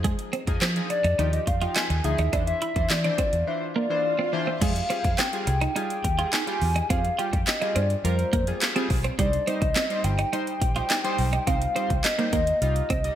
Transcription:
Already playing: F2 F3 D#4 G#4
0.04 G#3, kick, closed hi-hat
0.19 closed hi-hat
0.33 C4, closed hi-hat
0.47 F2 F3 D#4 G#4, muted clean electric guitar stroke, kick, closed hi-hat
0.61 F3 C4, snare, clap, closed hi-hat
0.76 F3 D#4 G#4, closed hi-hat
0.90 D5, muted clean electric guitar stroke, closed hi-hat
1.04 F2 D#4, closed hi-hat
1.19 D#2 F3 D#4 G4, closed hi-hat
1.33 D#5, closed hi-hat
1.47 F2 F5, muted clean electric guitar stroke, kick, closed hi-hat
1.61 F3 D#4 F4 G5, closed hi-hat
1.76 D#4 G#5, snare, clap, closed hi-hat
1.90 D#2, muted clean electric guitar stroke, closed hi-hat
2.04 D2 F3 D#4 G#4 E5, closed hi-hat
2.18 D#2 D#4, closed hi-hat
2.33 E2 E3 D4 C5, kick, closed hi-hat, swell
2.47 E5, closed hi-hat
2.62 E4, closed hi-hat
2.76 E2 E3 D4 C5, muted clean electric guitar stroke, kick, closed hi-hat
2.90 E3 D5, muted clean electric guitar stroke, snare, clap, closed hi-hat
3.04 E3 D4 C5 D5, closed hi-hat
3.18 C4, kick, closed hi-hat
3.33 E2, closed hi-hat
3.47 E3 D4 C5 E5
3.76 A#3 D5
3.90 E3 D4 C5
4.19 C4
4.33 E3 D4 C5 E5, muted clean electric guitar stroke
4.47 C4
4.61 F2 G3 G#3 F4 G#4 F5, kick, closed hi-hat, crash
4.76 closed hi-hat
4.90 G3 C4 F4 G#4, closed hi-hat
5.04 F2, muted clean electric guitar stroke, kick, closed hi-hat
5.18 C4 G5, snare, clap, closed hi-hat
5.33 G3 F4 G#4, closed hi-hat
5.47 C2, muted clean electric guitar stroke, closed hi-hat
5.61 D#4, closed hi-hat
5.76 G3 D#4 F4 G#4, closed hi-hat
5.90 closed hi-hat
6.04 D#2, muted clean electric guitar stroke, kick, closed hi-hat
6.18 G3 F4 G#4, closed hi-hat
6.33 D#4 G#5, snare, clap, closed hi-hat
6.47 G3 F4 G4, muted clean electric guitar stroke, closed hi-hat
6.62 E2, open hi-hat
6.76 D#4, closed hi-hat
6.90 F2 G3 C4 F4 G#4 F5, kick, closed hi-hat
7.05 closed hi-hat
7.18 G3 F4 G4 G5, closed hi-hat
7.33 F2, muted clean electric guitar stroke, kick, closed hi-hat
7.47 D#5, muted clean electric guitar stroke, snare, clap, closed hi-hat
7.61 G3 D#4 F4 G#4, closed hi-hat
7.76 G2 C4 D5, closed hi-hat
7.90 closed hi-hat
8.04 F2 G3 F4 A#4 C5, closed hi-hat
8.19 closed hi-hat
8.33 F2 A#3, kick, closed hi-hat
8.47 G3 F4 G#4, closed hi-hat
8.62 snare, clap, closed hi-hat
8.76 G3 C4 F4 G#4, closed hi-hat
8.90 B1, muted clean electric guitar stroke, kick, open hi-hat
9.04 C4, closed hi-hat
9.19 C2 G3 D#4 C5 D5, kick, closed hi-hat
9.33 closed hi-hat
9.47 G3 C4 D#4 C5 D#5, closed hi-hat
9.62 C2, muted clean electric guitar stroke, kick, closed hi-hat
9.76 C4, snare, clap, closed hi-hat
9.90 G3 D#4 C5, closed hi-hat
10.04 G1 G5, muted clean electric guitar stroke, closed hi-hat
10.19 D#4, closed hi-hat
10.33 G3 D#4 C5, closed hi-hat
10.47 closed hi-hat
10.61 A#1, muted clean electric guitar stroke, kick, closed hi-hat
10.76 G3 D#4 F4 C5, closed hi-hat
10.90 D#4, snare, clap, closed hi-hat
11.04 G3 D#4 C5, muted clean electric guitar stroke, closed hi-hat
11.18 B1, open hi-hat
11.33 D#4, closed hi-hat
11.47 C2 G3 C4 D#4 C5 F5, kick, closed hi-hat
11.62 closed hi-hat
11.75 G3 C4 D#4 C5, closed hi-hat
11.90 C2, muted clean electric guitar stroke, kick, closed hi-hat
12.04 D#5, muted clean electric guitar stroke, snare, clap, closed hi-hat
12.18 G3 A#3 D#4 C5, closed hi-hat
12.33 D#2 A#3 D#5, kick, closed hi-hat
12.47 closed hi-hat
12.61 C2 G3 D#4 F4, closed hi-hat
12.76 closed hi-hat
12.90 C2 C4, kick, closed hi-hat
13.04 G3 D#4 D#5, closed hi-hat

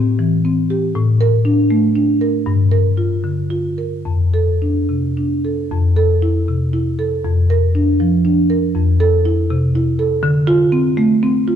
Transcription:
Already playing: A2 C4
0.19 E3
0.45 C4
0.70 G4
0.95 A2
1.21 A#4
1.45 D4
1.71 A3
1.96 D4
2.21 A#4
2.46 G2
2.72 A#4
2.97 F4
3.24 D3
3.50 F4
3.78 A#4
4.05 F2
4.34 A4
4.62 D4
4.89 C3
5.17 D4
5.45 A4
5.71 F2
5.97 A4
6.22 E4
6.48 C3
6.73 E4
6.99 A4
7.25 F2
7.50 A#4
7.75 D4
8.00 F3
8.25 D4
8.50 A#4
8.75 F2
9.00 A4
9.25 E4
9.50 C3
9.75 E4
9.99 A4
10.23 D3
10.47 F4
10.72 C4
10.97 A3
11.23 C4
11.48 F4

